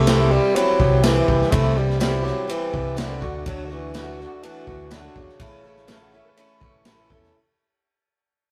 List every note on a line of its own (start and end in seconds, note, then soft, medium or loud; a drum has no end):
0.00 0.36 C2 loud
0.00 0.80 C3 medium
0.00 0.79 E3 medium
0.00 3.19 E3 medium
0.00 0.33 A3 loud
0.00 3.18 C4 medium
0.00 3.18 E4 medium
0.06 0.31 C3 medium
0.06 0.31 E3 medium
0.06 1.27 G3 medium
0.06 0.32 C4 medium
0.06 0.32 E4 loud
0.06 0.30 G4 medium
0.06 snare loud
0.06 ride bell medium
0.06 tambourine medium
0.31 0.57 G3 loud
0.31 0.54 C4 medium
0.31 0.56 E4 medium
0.31 0.56 G4 medium
0.55 0.80 E3 medium
0.55 1.04 F#3 loud
0.55 0.80 C4 medium
0.55 0.79 E4 medium
0.55 0.78 G4 medium
0.55 ride bell medium
0.79 1.18 C2 medium
0.79 1.75 E3 medium
0.79 1.03 C4 soft
0.79 1.04 E4 medium
0.79 1.04 G4 medium
0.79 kick loud
1.03 1.28 C3 medium
1.03 1.53 E3 loud
1.03 1.28 E3 medium
1.03 1.29 C4 medium
1.03 1.28 E4 loud
1.03 1.27 G4 medium
1.03 snare loud
1.03 ride bell medium
1.03 tambourine loud
1.28 1.38 C2 medium
1.28 1.99 G3 medium
1.28 1.52 C4 soft
1.28 1.52 E4 medium
1.28 1.52 G4 medium
1.28 kick loud
1.41 snare soft
1.51 2.29 C2 loud
1.51 1.76 C3 medium
1.51 1.77 E3 medium
1.51 1.79 A3 loud
1.51 1.77 C4 medium
1.51 1.77 E4 medium
1.51 1.75 G4 medium
1.51 kick loud
1.51 ride bell medium
1.76 2.73 E3 medium
1.76 2.00 G3 medium
1.76 2.00 C4 soft
1.76 2.00 E4 medium
1.76 2.00 G4 medium
1.90 snare soft
2.00 2.25 C3 medium
2.00 2.25 E3 medium
2.00 2.25 G3 medium
2.00 3.22 G3 medium
2.00 2.24 C4 loud
2.00 2.23 E4 medium
2.00 2.22 G4 medium
2.00 snare loud
2.00 ride bell medium
2.00 tambourine medium
2.23 2.51 F#3 medium
2.23 2.48 C4 medium
2.23 2.48 E4 soft
2.23 2.48 G4 medium
2.23 snare soft
2.48 2.73 E3 medium
2.48 3.00 E3 loud
2.48 2.73 C4 medium
2.48 2.73 E4 medium
2.48 2.71 G4 medium
2.48 ride bell medium
2.73 3.22 C2 loud
2.73 3.22 E3 medium
2.73 2.96 C4 soft
2.73 2.96 E4 medium
2.73 2.97 G4 medium
2.73 kick medium
2.96 3.21 C3 medium
2.96 3.46 D3 medium
2.96 3.21 E3 medium
2.96 3.22 C4 medium
2.96 3.22 E4 loud
2.96 3.20 G4 medium
2.96 snare loud
2.96 ride bell medium
2.96 tambourine medium
3.21 3.41 D2 medium
3.21 3.45 D3 medium
3.21 5.38 F#3 medium
3.21 5.38 A3 medium
3.21 3.46 A3 medium
3.21 3.46 D4 medium
3.21 5.38 D4 medium
3.21 3.46 F#4 medium
3.21 5.38 F#4 medium
3.21 kick loud
3.46 4.23 D2 loud
3.46 3.70 D3 medium
3.46 3.70 F#3 medium
3.46 3.66 F#3 loud
3.46 3.71 A3 medium
3.46 3.70 D4 medium
3.46 3.69 F#4 medium
3.46 kick loud
3.46 ride bell medium
3.65 3.74 D3 medium
3.70 4.66 D3 medium
3.70 4.20 E3 loud
3.70 3.94 A3 soft
3.70 3.94 D4 medium
3.70 3.94 F#4 medium
3.94 4.19 D3 medium
3.94 4.19 F#3 medium
3.94 4.19 A3 loud
3.94 4.18 D4 medium
3.94 4.16 F#4 loud
3.94 snare loud
3.94 ride bell medium
3.94 tambourine medium
4.17 4.42 A3 soft
4.17 4.43 D4 soft
4.17 4.42 F#4 medium
4.17 snare soft
4.22 4.45 D3 medium
4.43 4.68 E3 loud
4.43 4.67 F#3 medium
4.43 4.67 A3 medium
4.43 4.67 D4 medium
4.43 4.66 F#4 medium
4.43 ride bell medium
4.67 5.06 D2 medium
4.67 5.40 D3 medium
4.67 4.90 E3 medium
4.67 4.90 A3 soft
4.67 4.91 D4 medium
4.67 4.91 F#4 medium
4.67 kick medium
4.90 5.15 D3 medium
4.90 5.18 D3 medium
4.90 5.15 F#3 medium
4.90 5.16 A3 medium
4.90 5.15 D4 medium
4.90 5.14 F#4 loud
4.90 snare loud
4.90 ride bell medium
4.90 tambourine medium
5.15 5.25 E2 medium
5.15 6.86 C#3 medium
5.15 5.39 A3 medium
5.15 5.40 D4 medium
5.15 5.40 F#4 medium
5.15 kick medium
5.28 snare soft
5.39 6.16 A1 loud
5.39 5.64 A2 medium
5.39 7.32 E3 medium
5.39 5.64 E3 medium
5.39 7.32 A3 medium
5.39 5.65 A3 medium
5.39 7.32 C#4 medium
5.39 5.64 C#4 medium
5.39 7.32 E4 medium
5.39 5.63 E4 medium
5.39 5.63 A4 medium
5.39 kick loud
5.39 ride bell medium
5.64 6.61 E3 medium
5.64 5.87 A3 soft
5.64 5.87 C#4 soft
5.64 5.87 E4 soft
5.64 5.88 A4 medium
5.76 snare soft
5.87 6.12 A2 medium
5.87 6.12 E3 medium
5.87 6.12 A3 medium
5.87 6.13 C#4 medium
5.87 6.12 E4 loud
5.87 6.11 A4 loud
5.87 6.01 A5 medium
5.87 snare loud
5.87 ride bell medium
5.87 tambourine medium
6.02 6.13 F#5 medium
6.12 6.36 A3 medium
6.12 6.37 C#4 medium
6.12 6.37 E4 medium
6.12 6.37 A4 medium
6.12 6.25 E5 medium
6.24 6.26 A#4 medium
6.29 7.09 B4 loud
6.37 6.61 A3 medium
6.37 6.61 C#4 medium
6.37 6.60 E4 medium
6.37 6.59 A4 medium
6.37 ride bell medium
6.60 7.10 A1 medium
6.60 7.35 E3 medium
6.60 6.86 A3 medium
6.60 6.85 C#4 medium
6.60 6.86 E4 medium
6.60 6.85 A4 medium
6.60 kick loud
6.85 7.10 A2 medium
6.85 7.10 E3 medium
6.85 7.10 A3 medium
6.85 7.09 C#4 medium
6.85 7.09 E4 loud
6.85 7.08 A4 loud
6.85 snare loud
6.85 ride bell medium
6.85 tambourine loud
7.09 7.29 E2 medium
7.09 7.35 A3 medium
7.09 7.35 C#4 medium
7.09 7.34 E4 medium
7.09 7.34 A4 medium
7.09 kick medium
7.13 7.35 A4 medium
7.23 snare soft